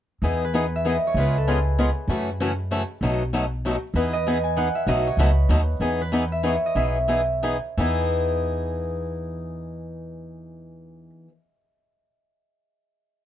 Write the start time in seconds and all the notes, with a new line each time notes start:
0.22 E2 E3 B3 D#4 G#4
0.44 B4
0.54 E3 B3 D#4 G#4
0.76 E5
0.85 E3 B3 D#4 G#4 D#5
1.07 C#5
1.14 C#2 C#3 G#3 B3 F4 G#4
1.20 B4
1.38 A4
1.48 C#3 G#3 B3 F4 G#4
1.79 C#3 G#3 B3 F4 G#4
2.08 F#2 C#3 E3 A3 C#4 F#4
2.40 C#3 E3 A3 C#4 F#4
2.71 C#3 E3 A3 C#4 F#4
3.01 B1 B2 F#3 A3 D#4 F#4
3.33 B2 F#3 A3 D#4 F#4
3.65 B2 F#3 A3 D#4 F#4
3.94 E2 E3 B3 D#4 G#4 B4
4.13 D#5
4.27 E3 B3 D#4 G#4
4.44 G#5
4.56 E3 B3 D#4 G#4 F#5
4.75 E5
4.87 B1 B2 F#3 A3 D#4 F#4 D#5
5.07 C#5
5.17 C#2 B2 F#3 A3 D#4 F#4 B4
5.49 D#2 B2 F#3 A3 D#4 F#4
5.80 E2 E3 B3 D#4 G#4
6.01 B4
6.12 E3 B3 D#4 G#4
6.32 E5
6.43 E3 B3 D#4 G#4 C#5
6.66 D#5
6.75 B1 E3 B3 D#4 G#4 E5
7.08 E3 B3 D#4 G#4
7.43 E3 B3 D#4 G#4
7.77 E2 E3 B3 D#4 G#4 G#5